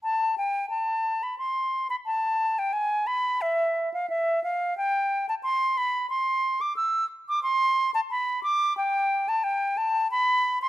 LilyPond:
\new Staff \with { instrumentName = "Flute" } { \time 4/4 \key a \minor \tempo 4 = 90 a''8 g''8 a''8. b''16 c'''8. b''16 a''8. g''16 | gis''8 b''8 e''8. f''16 e''8 f''8 g''8. a''16 | c'''8 b''8 c'''8. d'''16 e'''8. d'''16 c'''8. a''16 | b''8 d'''8 g''8. a''16 g''8 a''8 b''8. c'''16 | }